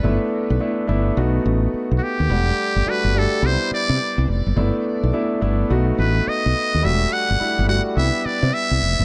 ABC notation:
X:1
M:4/4
L:1/16
Q:"Swing 16ths" 1/4=106
K:Em
V:1 name="Muted trumpet"
z12 z3/2 F/2 G2- | G4 B2 A2 c2 d4 z2 | z8 z2 B2 ^d4 | e2 f4 f2 e2 d2 e4 |]
V:2 name="Grand piano"
[A,B,DE]4 [A,B,DE]2 [A,B,DE]2 [A,B,^DF]6- [A,B,DF] z | [G,A,Df]4 [G,A,DF]2 [G,A,DG]2 [G,B,DE]6- [G,B,DE] z | [A,B,DE]4 [A,B,DE]2 [A,B,DE]2 [A,B,^DF]6- [A,B,DF] z | [G,A,DF]4 [G,A,DE]2 [G,A,DF]2 [G,B,DE]6- [G,B,DE] z |]
V:3 name="Fretless electric bass" clef=bass
G,,, z2 B,,, z2 G,,,2 B,,,2 A,,,2 z B,,, z ^D,, | E,,,2 z G,,, z G,,,2 z C,, z2 C, z C,, =F,,, ^F,,, | G,,, z2 B,,, z2 G,,,2 B,,,2 A,,,2 z B,,, z ^D,, | E,,,2 z G,,, z G,,,2 z C,, z2 C, z C,, =F,,, ^F,,, |]